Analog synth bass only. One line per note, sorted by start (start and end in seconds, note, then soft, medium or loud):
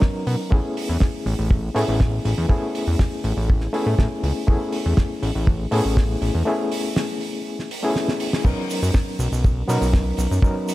0.27 0.36 B2 medium
0.52 0.61 A1 loud
0.89 0.98 E2 medium
1.26 1.35 A1 medium
1.39 1.70 A1 medium
1.76 1.85 A2 medium
1.88 2.20 A1 medium
2.25 2.34 A1 medium
2.38 2.46 E2 medium
2.87 2.96 E2 medium
3.24 3.33 A1 medium
3.37 3.68 A1 medium
3.86 3.95 A2 medium
3.99 4.08 A2 medium
4.23 4.32 C#2 medium
4.48 4.57 A1 loud
4.86 4.94 E2 medium
5.22 5.32 A1 medium
5.35 5.67 A1 medium
5.72 5.81 A2 medium
5.85 6.16 A1 medium
6.22 6.31 A1 medium
6.35 6.43 E2 medium
8.45 8.54 B1 loud
8.83 8.91 F#2 medium
9.19 9.28 B1 medium
9.32 9.63 B1 medium
9.69 9.78 B2 medium
9.81 10.13 B1 medium
10.18 10.28 B1 medium
10.31 10.40 F#2 medium